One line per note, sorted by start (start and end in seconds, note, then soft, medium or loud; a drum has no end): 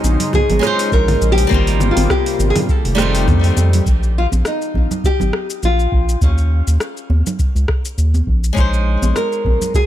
0.00 0.17 A#1 medium
0.00 1.47 C#3 medium
0.00 0.58 G#3 medium
0.00 1.47 G#3 medium
0.00 0.59 C#4 medium
0.00 0.60 D#4 medium
0.00 1.49 D#4 medium
0.00 0.60 F4 medium
0.00 0.61 C5 medium
0.00 1.47 C5 medium
0.04 high conga medium
0.04 shaker medium
0.20 open hi-hat medium
0.20 low conga medium
0.20 shaker soft
0.33 0.93 G#4 loud
0.33 kick loud
0.33 low conga medium
0.33 shaker soft
0.50 0.60 G#1 medium
0.50 open hi-hat soft
0.50 high conga medium
0.50 low conga medium
0.59 1.46 G#3 medium
0.59 1.47 C#4 medium
0.59 1.48 D#4 medium
0.59 cross-stick medium
0.59 shaker medium
0.65 1.49 F4 medium
0.65 1.50 C5 loud
0.79 open hi-hat medium
0.79 shaker soft
0.92 1.16 A#1 medium
0.92 1.32 A#4 loud
0.92 kick medium
0.92 shaker soft
1.08 open hi-hat soft
1.08 low conga medium
1.21 1.46 A#1 medium
1.21 shaker medium
1.32 1.92 G4 loud
1.38 open hi-hat medium
1.38 shaker soft
1.47 1.92 G#1 medium
1.47 2.65 G3 medium
1.47 2.67 G3 medium
1.47 2.66 A#3 medium
1.47 2.67 C4 medium
1.47 2.67 F4 medium
1.47 kick loud
1.51 2.68 C3 medium
1.51 2.68 A#3 medium
1.51 2.68 D#4 medium
1.51 2.69 F4 loud
1.51 shaker soft
1.67 open hi-hat soft
1.80 low conga medium
1.80 shaker medium
1.91 2.11 F4 medium
1.97 2.07 G#1 medium
1.97 open hi-hat medium
1.97 high conga medium
1.97 shaker soft
2.10 2.50 G4 medium
2.10 kick loud
2.10 cross-stick medium
2.10 shaker soft
2.26 open hi-hat soft
2.39 2.52 G#1 medium
2.39 high conga medium
2.39 shaker medium
2.50 2.55 G#4 loud
2.56 open hi-hat medium
2.56 low conga medium
2.56 shaker soft
2.69 3.85 D#3 medium
2.69 3.85 A3 medium
2.69 3.85 G4 medium
2.69 3.58 A4 medium
2.69 kick loud
2.69 shaker soft
2.85 3.29 F1 medium
2.85 open hi-hat soft
2.95 3.82 G3 medium
2.95 3.82 A3 medium
2.95 3.83 C4 medium
2.95 cross-stick medium
2.95 shaker medium
3.00 3.84 D#4 medium
3.00 3.85 F4 loud
3.15 open hi-hat medium
3.15 shaker soft
3.27 3.52 F2 loud
3.27 kick loud
3.27 low conga medium
3.27 shaker soft
3.44 open hi-hat soft
3.44 high conga medium
3.57 3.81 F2 loud
3.57 high conga medium
3.57 shaker medium
3.73 open hi-hat medium
3.73 low conga medium
3.73 shaker soft
3.86 4.27 A#1 medium
3.86 kick loud
3.86 shaker medium
4.03 shaker soft
4.18 4.26 F4 medium
4.32 4.43 A#1 medium
4.32 high conga medium
4.32 shaker medium
4.45 5.07 D#4 medium
4.45 cross-stick medium
4.45 shaker medium
4.62 shaker soft
4.74 4.88 A#1 medium
4.74 kick medium
4.74 high conga medium
4.91 low conga medium
4.91 shaker medium
5.04 5.65 G4 loud
5.04 kick loud
5.04 shaker soft
5.20 5.31 G#1 medium
5.20 high conga medium
5.20 low conga medium
5.20 shaker soft
5.33 cross-stick medium
5.50 shaker medium
5.63 5.87 A#1 medium
5.63 6.19 F4 medium
5.63 shaker medium
5.79 shaker soft
5.92 6.16 A#1 medium
5.92 kick loud
6.09 shaker medium
6.21 6.62 D#2 medium
6.21 8.25 C#4 medium
6.21 kick loud
6.21 shaker medium
6.38 shaker soft
6.67 6.78 D#2 medium
6.67 shaker medium
6.80 cross-stick medium
6.80 shaker medium
6.97 shaker soft
7.10 7.23 D#2 medium
7.10 high conga medium
7.27 low conga medium
7.27 shaker medium
7.39 kick loud
7.39 shaker medium
7.55 7.66 C#2 medium
7.55 shaker soft
7.68 kick loud
7.68 cross-stick medium
7.85 shaker medium
7.98 8.22 D#2 medium
7.98 shaker medium
8.14 high conga medium
8.14 shaker soft
8.27 8.51 A#1 medium
8.27 kick medium
8.44 shaker medium
8.53 8.97 A#1 medium
8.53 9.86 G#3 medium
8.53 9.86 C#4 medium
8.53 9.86 D#4 medium
8.53 kick loud
8.57 9.86 C5 medium
8.57 shaker medium
8.74 shaker soft
9.02 9.13 A#1 medium
9.02 high conga medium
9.02 shaker medium
9.16 9.75 A#4 medium
9.16 cross-stick medium
9.16 shaker medium
9.33 shaker soft
9.45 9.58 A#1 medium
9.45 kick medium
9.45 high conga medium
9.62 low conga medium
9.62 shaker medium
9.74 9.83 G#4 loud
9.74 kick loud
9.74 shaker medium